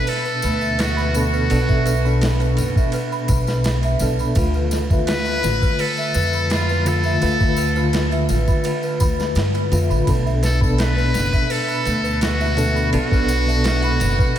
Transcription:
Already playing: B2 B3 D4 A4 B4 E5 B5
0.07 A4 B4, open hi-hat, tambourine
0.25 B4, tambourine
0.42 D2 B4, ride, tambourine
0.61 E5, tambourine
0.78 F#4 B4, snare, ride, tambourine
0.97 B5, tambourine
1.14 B2 B3 D4 F#4 A4 B4, ride, tambourine
1.33 B4, tambourine
1.50 B1 B2 B3 D4 A4 B4, ride, tambourine
1.69 E5, kick, tambourine
1.86 B4, ride, tambourine
2.04 B2 B3 D4 A4 B5, tambourine
2.21 B4, snare, ride, tambourine
2.40 B4, ride, tambourine
2.57 F#1 B4, ride, tambourine
2.76 E5, kick, tambourine
2.92 B4, ride, tambourine
3.12 B5, tambourine
3.28 B1 B4, kick, ride, tambourine
3.47 B4, snare, tambourine
3.64 B4, snare, ride, tambourine
3.83 E5, ride, tambourine
3.99 B1 B2 B3 D4 A4 B4, ride, tambourine
4.19 B5, tambourine
4.35 D2 D3 A3 F4 B4, kick, ride, tambourine
4.54 B4, tambourine
4.71 B4, snare, ride, tambourine
4.90 D3 A3 F4 B4 E5, kick, tambourine
5.07 B4, snare, ride, tambourine
5.25 B5, tambourine
5.43 A1 B4, snare, ride, tambourine
5.62 B4, kick, tambourine
5.79 A4 B4, open hi-hat, tambourine
5.97 E5, tambourine
6.14 F2 B4, ride, tambourine
6.33 B5, tambourine
6.50 F4 B4, snare, ride, tambourine
6.69 B4, tambourine
6.85 D3 A3 F4 A4 B4, ride, tambourine
7.04 E5, tambourine
7.21 D2 D3 A3 F4 B4, ride, tambourine
7.40 B5, kick, tambourine
7.57 B4, ride, tambourine
7.75 D3 A3 F4 B4, tambourine
7.93 B4, snare, ride, tambourine
8.12 E5, ride, tambourine
8.29 A1 B4, ride, tambourine
8.48 B5, kick, tambourine
8.64 B4, ride, tambourine
8.83 B4, tambourine
9.00 D2 B5, kick, ride, tambourine
9.19 B4, snare, tambourine
9.35 G2 B4, snare, ride, tambourine
9.54 B4, ride, tambourine
9.71 F2 D3 A3 F4 B4 E5, ride, tambourine
9.90 A1 B5, tambourine
10.07 B1 B2 B3 D4 A4 B4, kick, ride, tambourine
10.26 E5, tambourine
10.43 A4 B4, snare, ride, tambourine
10.60 B2 B3 D4 A4 B5, kick, tambourine
10.78 B4, snare, ride, tambourine
10.96 B4, tambourine
11.14 F#1 B4, snare, ride, tambourine
11.33 E5, kick, tambourine
11.50 A4 B4, open hi-hat, tambourine
11.68 B5, tambourine
11.85 D2 B4, ride, tambourine
12.04 B4, tambourine
12.21 F#4 B4, snare, ride, tambourine
12.41 E5, tambourine
12.57 B2 B3 D4 A4 B4, ride, tambourine
12.76 B5, tambourine
12.92 B1 B2 B3 D4 F#4 A4 B4, ride, tambourine
13.12 B4, kick, tambourine
13.28 B4, ride, tambourine
13.46 B2 B3 D4 A4 E5, tambourine
13.64 B4, snare, ride, tambourine
13.82 B5, ride, tambourine
14.00 F#1 B4, ride, tambourine
14.19 B4, kick, tambourine

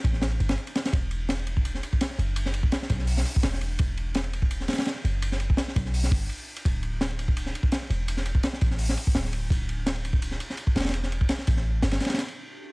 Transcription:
0.04 A1, kick, ride
0.13 snare
0.22 snare, ride
0.31 ride
0.40 G1, ride
0.49 snare, ride
0.58 ride
0.67 ride
0.75 snare, ride
0.85 snare, ride
0.93 E1, kick, ride
1.11 ride
1.29 snare, ride
1.39 ride
1.47 ride
1.57 kick
1.65 ride
1.75 snare
1.83 ride
1.93 kick
2.01 snare, ride
2.10 snare
2.18 F#1, ride
2.36 ride
2.46 snare
2.54 ride
2.63 kick
2.72 snare, ride
2.82 snare
2.90 B1, kick, ride
2.99 snare
3.07 open hi-hat
3.17 snare
3.25 ride
3.36 kick
3.43 E1, snare, ride
3.53 snare
3.61 ride
3.79 E1, kick, ride
3.97 ride
4.14 snare, ride
4.24 ride
4.33 ride
4.42 kick
4.51 ride
4.60 snare
4.68 snare, ride
4.73 snare, ride
4.78 snare, ride
4.81 snare, ride
4.85 snare, ride
4.96 snare
5.04 F#1, ride
5.22 ride
5.32 snare
5.40 ride
5.50 kick
5.57 snare, ride
5.68 snare
5.76 B1, kick, ride
5.86 snare
5.94 open hi-hat
6.03 snare
6.11 G1, kick, ride
6.29 ride
6.56 ride
6.65 D1, kick, ride
6.83 ride
7.01 snare, ride
7.11 ride
7.19 ride
7.28 kick
7.37 ride
7.46 snare
7.55 ride
7.63 kick
7.72 snare, ride
7.82 snare
7.90 E1, ride
8.08 ride
8.17 snare
8.26 ride
8.35 kick
8.43 snare, ride
8.53 snare
8.61 A1, kick, ride
8.71 snare
8.79 open hi-hat
8.89 snare
8.97 ride
9.07 kick
9.15 D1, snare, ride
9.25 snare
9.33 ride
9.50 D1, kick, ride
9.69 ride
9.86 snare, ride
9.96 ride
10.05 ride
10.13 kick
10.22 ride
10.31 snare
10.40 ride
10.50 snare
10.57 ride
10.67 kick
10.76 E1, snare, ride
10.80 snare, ride
10.84 snare, ride
10.89 snare, ride
10.94 ride
11.03 snare
11.12 ride
11.21 kick
11.29 snare, ride
11.38 snare
11.47 A1, kick, ride
11.57 snare
11.82 G1, snare, ride
11.91 snare, ride
12.00 snare, ride
12.05 snare, ride
12.09 snare, ride
12.14 snare, ride
12.18 snare, ride
12.28 ride
12.36 D4 E4 F#4 G4 A4

